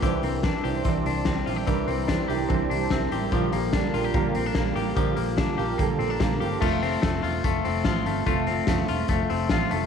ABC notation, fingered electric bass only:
X:1
M:4/4
L:1/16
Q:1/4=146
K:F
V:1 name="Fingered electric bass" clef=bass
C,,2 C,,3 z C,,2 C,,2 C,,2 C,,2 B,,,2 | C,,2 C,,3 z C,,2 C,,2 C,,2 C,,2 A,,,2 | B,,,2 B,,,3 z B,,,2 B,,,2 B,,,2 B,,,2 A,,,2 | B,,,2 B,,,3 z B,,,2 B,,,2 B,,,2 B,,,2 G,,,2 |
F,,,4 F,,,2 E,,,2 F,,,2 F,,,2 A,,,2 G,,,2 | F,,,4 F,,,2 E,,,2 F,,,2 F,,,2 A,,,2 F,,,2 |]